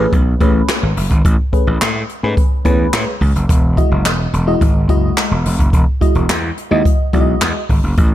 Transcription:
0.00 fm electric piano A3 C#4 G#4 B4
0.13 slap bass B1, kick, closed hi-hat
0.40 slap bass A1, fm electric piano A3 C#4 G#4 B4, kick, closed hi-hat
0.68 snare, clap, closed hi-hat
0.83 slap bass G#1
0.97 slap bass F#1, open hi-hat
1.11 slap bass G#1, kick, closed hi-hat
1.25 slap bass A1, kick, closed hi-hat
1.53 fm electric piano A3 C#4 G#4 B4, kick, closed hi-hat
1.67 slap bass A1
1.81 slap bass A2, snare, clap, closed hi-hat
2.09 closed hi-hat
2.23 slap bass G#2, fm electric piano A3 C#4 G#4 B4
2.37 kick, closed hi-hat
2.65 slap bass E2, fm electric piano A3 C#4 G#4 B4, kick, closed hi-hat
2.93 slap bass A2, snare, clap, closed hi-hat
3.21 slap bass C#2, kick, open hi-hat
3.35 slap bass F#1, closed hi-hat
3.49 slap bass E1, kick, closed hi-hat
3.77 fm electric piano G#3 E4 F#4 D#5, kick, closed hi-hat
3.91 slap bass F#1
4.05 slap bass E1, snare, clap, closed hi-hat
4.33 slap bass E1, closed hi-hat
4.47 fm electric piano G#3 E4 F#4 D#5
4.61 slap bass G#1, kick, closed hi-hat
4.89 slap bass F#1, fm electric piano G#3 E4 F#4 D#5, kick, closed hi-hat
5.17 snare, clap, closed hi-hat
5.31 slap bass E1
5.45 slap bass E1, open hi-hat
5.59 slap bass F#1, kick, closed hi-hat
5.73 slap bass E1, kick, closed hi-hat
6.01 fm electric piano G#3 E4 F#4 D#5, kick, closed hi-hat
6.15 slap bass E1, closed hi-hat
6.29 slap bass E2, snare, clap, closed hi-hat
6.58 closed hi-hat
6.71 slap bass D#2, fm electric piano G#3 E4 F#4 D#5
6.85 kick, closed hi-hat
7.13 slap bass B1, fm electric piano G#3 E4 F#4 D5, kick, closed hi-hat
7.21 fm electric piano D#5
7.41 slap bass E2, snare, clap, closed hi-hat
7.69 slap bass G#1, kick, open hi-hat
7.84 slap bass F#1
7.98 slap bass A1, kick, closed hi-hat

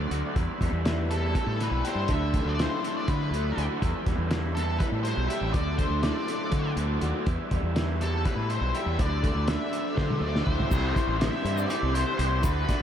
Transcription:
Already playing: overdriven electric guitar D3 A3 E4, transistor combo organ F#3 D4 A4 E5
0.11 fingered electric bass D2, overdriven electric guitar F#4, closed hi-hat
0.34 overdriven electric guitar E2, fingered electric bass E2, transistor combo organ G3 E4 B4, kick, closed hi-hat
0.61 fingered electric bass E2, overdriven electric guitar G3, kick, closed hi-hat
0.73 fingered electric bass E2
0.85 overdriven electric guitar E4, snare, closed hi-hat
1.11 overdriven electric guitar G3, lead electric guitar A4, closed hi-hat
1.35 overdriven electric guitar E3, kick, closed hi-hat
1.47 fingered electric bass A2
1.60 overdriven electric guitar G3, lead electric guitar B4, snare, closed hi-hat
1.71 fingered electric bass B1
1.85 overdriven electric guitar G4, lead electric guitar C5, closed hi-hat
1.95 fingered electric bass G2
2.08 fingered electric bass D2, overdriven electric guitar D3, transistor combo organ F#3 D4 A4, lead electric guitar E5, kick, closed hi-hat
2.34 overdriven electric guitar A3, kick, closed hi-hat
2.45 fingered electric bass D2, lead electric guitar D5 E5
2.55 lead electric guitar D5
2.59 overdriven electric guitar E4, lead electric guitar C5, snare, closed hi-hat
2.83 overdriven electric guitar A3, closed hi-hat
2.97 lead electric guitar D5
3.08 overdriven electric guitar D3, fingered electric bass D3, lead electric guitar B4, kick, closed hi-hat
3.31 fingered electric bass D2, overdriven electric guitar A3, closed hi-hat
3.57 fingered electric bass D2, overdriven electric guitar F#4, closed hi-hat
3.81 overdriven electric guitar E2, fingered electric bass E2, transistor combo organ G3 E4 B4, kick, closed hi-hat
4.06 fingered electric bass E2, overdriven electric guitar G3, kick, snare, closed hi-hat
4.18 fingered electric bass E2
4.31 overdriven electric guitar E4, snare, closed hi-hat
4.55 overdriven electric guitar G3, lead electric guitar A4, snare, closed hi-hat
4.79 overdriven electric guitar E3, lead electric guitar B4, kick, closed hi-hat
4.92 fingered electric bass A2
5.03 overdriven electric guitar G3, lead electric guitar C5, closed hi-hat
5.17 fingered electric bass B1
5.28 overdriven electric guitar G4, lead electric guitar E5, closed hi-hat
5.41 fingered electric bass A1
5.52 fingered electric bass D2, overdriven electric guitar D3, transistor combo organ F#3 D4 A4 E5, lead electric guitar D5, kick, closed hi-hat
5.77 overdriven electric guitar A3, lead electric guitar C5, kick, closed hi-hat
5.89 fingered electric bass D2
6.02 overdriven electric guitar E4, lead electric guitar D5, snare, closed hi-hat
6.28 overdriven electric guitar A3, closed hi-hat
6.52 fingered electric bass D3, overdriven electric guitar D3, kick, closed hi-hat
6.76 fingered electric bass D2, overdriven electric guitar A3, closed hi-hat
7.01 fingered electric bass D#2, overdriven electric guitar F#4, closed hi-hat
7.26 fingered electric bass E2, overdriven electric guitar E2, transistor combo organ G3 E4 B4, kick, closed hi-hat
7.51 fingered electric bass E2, overdriven electric guitar G3, kick, closed hi-hat
7.63 fingered electric bass E2
7.76 overdriven electric guitar E4, snare, closed hi-hat
8.01 overdriven electric guitar G3, lead electric guitar A4, closed hi-hat
8.25 overdriven electric guitar E3, lead electric guitar B4, kick, closed hi-hat
8.36 fingered electric bass A2
8.50 overdriven electric guitar G3, lead electric guitar C5, closed hi-hat
8.61 fingered electric bass B1
8.75 overdriven electric guitar G4, lead electric guitar E5, closed hi-hat
8.86 fingered electric bass E2
8.98 fingered electric bass D2, overdriven electric guitar D3, transistor combo organ F#3 D4 A4, lead electric guitar D5, kick, closed hi-hat
9.23 overdriven electric guitar A3, lead electric guitar D5, kick, closed hi-hat
9.35 fingered electric bass D2
9.47 overdriven electric guitar D4, lead electric guitar E5, snare, closed hi-hat
9.72 overdriven electric guitar A3, closed hi-hat
9.95 fingered electric bass D3, overdriven electric guitar F#3, lead electric guitar C5, kick, snare
10.10 high tom
10.20 fingered electric bass D2, overdriven electric guitar A3, lead electric guitar D5
10.36 snare
10.45 fingered electric bass D2, overdriven electric guitar E4, lead electric guitar C5, kick
10.60 floor tom
10.69 fingered electric bass C2, overdriven electric guitar C3 E3 G3 C4 E4, transistor combo organ E4 G4 C5 G5, kick, crash, shaker
10.94 overdriven electric guitar G3 C4 E4, kick, closed hi-hat, shaker
11.07 fingered electric bass A1
11.18 overdriven electric guitar E3 G3 C4 E4, lead electric guitar E5, snare, closed hi-hat
11.44 fingered electric bass G2, overdriven electric guitar C3 E3 G3 C4 E4, closed hi-hat
11.58 shaker
11.69 overdriven electric guitar E3 G3 C4 E4, lead electric guitar D5, closed hi-hat, shaker
11.83 fingered electric bass C2
11.93 overdriven electric guitar G3 C4 E4, lead electric guitar C5, closed hi-hat
12.18 fingered electric bass C2, overdriven electric guitar C3 E3 G3 C4 E4, lead electric guitar C5, closed hi-hat
12.42 fingered electric bass D2, overdriven electric guitar D3 A3 D4 F#4, transistor combo organ F#4 A4 D5 A5, lead electric guitar B4, kick, closed hi-hat, shaker
12.68 overdriven electric guitar A3 D4 F#4, kick, snare, closed hi-hat, shaker

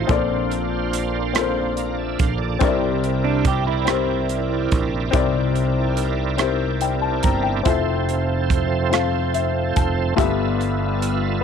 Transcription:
Already playing: grand piano C4 D#4 F4 A4 D#5
0.07 fingered electric bass A#1, grand piano A#2 C4 F4 A4 A#4 D5, tonewheel organ A#3 D4 F4 C5, kick, closed hi-hat
0.51 closed hi-hat
0.93 closed hi-hat
1.33 grand piano C4 F4 A4 A#4, cross-stick, closed hi-hat
1.38 grand piano C5
1.77 tonewheel organ F5 A#5, closed hi-hat
1.98 tonewheel organ E5 A5
2.19 fingered electric bass A#1, tonewheel organ C5 F5, kick, closed hi-hat
2.38 tonewheel organ A4 D5
2.59 fingered electric bass C2, grand piano C3 C4 D4 G4 A#4, tonewheel organ C4 E4 A#4 C#5, kick, closed hi-hat
2.64 grand piano E4 D5
2.68 tonewheel organ D5
3.04 closed hi-hat
3.24 clean electric guitar D4
3.45 clean electric guitar G4, kick, closed hi-hat
3.67 clean electric guitar E4
3.85 grand piano C4 E4 G4 A#4, cross-stick, closed hi-hat
3.89 grand piano C5
4.29 closed hi-hat
4.72 fingered electric bass A#1, kick, closed hi-hat
5.11 fingered electric bass C2, grand piano C3 C4 D#4 G4 A#4, kick, closed hi-hat
5.15 grand piano E4 D5
5.56 closed hi-hat
5.97 closed hi-hat
6.38 grand piano C4 E4 G4 A#4, cross-stick, closed hi-hat
6.42 grand piano C5
6.81 grand piano G5, closed hi-hat
7.02 grand piano A5
7.23 fingered electric bass G1, grand piano A#5, kick, closed hi-hat
7.43 grand piano G5
7.63 fingered electric bass F1, tonewheel organ F3 C4 A4 C5, grand piano C4 E4 F4 A4, kick, closed hi-hat
7.68 grand piano E5
8.09 closed hi-hat
8.50 kick, closed hi-hat
8.89 grand piano C4 F4 A4 F5, closed hi-hat
8.94 cross-stick
9.34 grand piano E5, closed hi-hat
9.76 fingered electric bass F1, grand piano A5, kick, closed hi-hat
10.16 fingered electric bass G1, grand piano G2 A3 F4 G4 A4 E5, tonewheel organ B3 F4 A4 D5, kick, closed hi-hat
10.22 grand piano B3, tonewheel organ E5
10.61 closed hi-hat
11.02 closed hi-hat

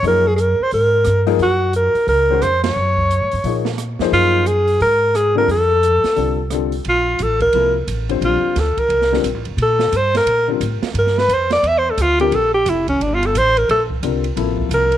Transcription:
0.03 upright bass F#2, grand piano F3 A#3 D#4 G#4 C#5, open hi-hat
0.07 alto saxophone A#4
0.27 alto saxophone G#4
0.36 alto saxophone G#4 A#4, closed hi-hat
0.60 alto saxophone C5, muted upright bass stroke
0.71 upright bass G#2, alto saxophone A#4, open hi-hat
1.04 upright bass G2, cross-stick, closed hi-hat
1.26 grand piano F3 A#3 D#4 G#4 A#4, open hi-hat
1.39 upright bass F#2, alto saxophone F#4, open hi-hat
1.73 alto saxophone A#4, closed hi-hat
1.94 muted upright bass stroke, open hi-hat
2.07 upright bass C#2, alto saxophone A#4, open hi-hat
2.30 grand piano D#3 G#3 C#4 F#4 C5
2.42 upright bass F2, alto saxophone C5, cross-stick, closed hi-hat
2.64 alto saxophone C#5, snare, ride
2.76 upright bass F#2
2.97 kick
3.11 closed hi-hat
3.21 upright bass G#2
3.31 upright bass G2, open hi-hat
3.44 upright bass A#2, grand piano F3 A#3 D#4 G#4 C#5, open hi-hat
3.65 snare
3.78 cross-stick, closed hi-hat
3.99 upright bass F2, grand piano F3 A#3 D#4 G#4 C5, snare
4.12 upright bass F#2, alto saxophone F4, open hi-hat
4.46 alto saxophone G#4, closed hi-hat
4.68 open hi-hat
4.80 upright bass G#2, alto saxophone A#4, open hi-hat
5.15 alto saxophone G#4, cross-stick, closed hi-hat
5.35 grand piano D3 G3 C4 F4 A4, alto saxophone A#4
5.48 upright bass F2, alto saxophone A4, open hi-hat
5.83 closed hi-hat
6.04 muted upright bass stroke, snare, open hi-hat
6.16 upright bass C2, grand piano D3 G3 C4 F4 A4, open hi-hat
6.50 grand piano D3 G3 C4 F4 A4, cross-stick, closed hi-hat
6.72 open hi-hat
6.85 upright bass A#1, ride
6.89 alto saxophone F4
7.19 upright bass A1, alto saxophone A4, hi-hat pedal, ride
7.40 alto saxophone A#4, kick, ride
7.53 upright bass C2, grand piano C3 F3 A#3 E4 A4, ride
7.87 upright bass A1, hi-hat pedal, ride
8.09 grand piano D3 G3 C4 F4 C5, ride
8.21 upright bass A#1, alto saxophone F4, ride
8.56 upright bass D2, alto saxophone A4, snare, hi-hat pedal, ride
8.77 alto saxophone A#4, muted upright bass stroke, kick, ride
8.89 upright bass C2, ride
9.01 snare
9.12 grand piano D3 G3 C4 F4 A#4, snare
9.24 upright bass A#1, hi-hat pedal, ride
9.34 upright bass A1
9.45 upright bass F1, ride
9.57 upright bass A#2, ride
9.62 alto saxophone A4
9.79 snare
9.92 upright bass G2, hi-hat pedal, ride
9.97 alto saxophone C5
10.15 alto saxophone A#4, snare, ride
10.26 upright bass A#2, ride
10.48 grand piano D3 G3 C4 F4 A#4
10.60 upright bass A2, hi-hat pedal, ride
10.82 muted upright bass stroke, snare, ride
10.94 upright bass G2, ride
10.98 alto saxophone A#4
11.07 snare
11.18 alto saxophone B4, snare
11.28 upright bass F2, hi-hat pedal, ride
11.33 alto saxophone C5
11.50 alto saxophone D5, snare, ride
11.63 upright bass E2, ride
11.68 alto saxophone E5
11.78 alto saxophone C5
11.90 alto saxophone A4
11.97 upright bass D2, alto saxophone F4, hi-hat pedal, ride
12.19 grand piano D3 G3 C4 F4 A#4, alto saxophone G4, ride
12.32 upright bass A#1, alto saxophone A4, ride
12.54 alto saxophone G4
12.66 upright bass F1, alto saxophone E4, hi-hat pedal, ride
12.88 alto saxophone C#4, kick, ride
13.00 upright bass G1, alto saxophone D4, ride
13.14 alto saxophone F4
13.23 alto saxophone A4, ride
13.35 upright bass A1, alto saxophone C5, hi-hat pedal, ride
13.57 alto saxophone A#4, ride
13.69 upright bass A#1, alto saxophone A4, ride
13.90 kick
14.03 upright bass C2, grand piano D3 G3 C4 F4 A#4, hi-hat pedal, ride
14.24 ride
14.36 upright bass A1, grand piano C3 F3 A#3 E4 A4, ride
14.58 kick
14.69 upright bass C2, hi-hat pedal, ride
14.74 alto saxophone A#4
14.92 ride

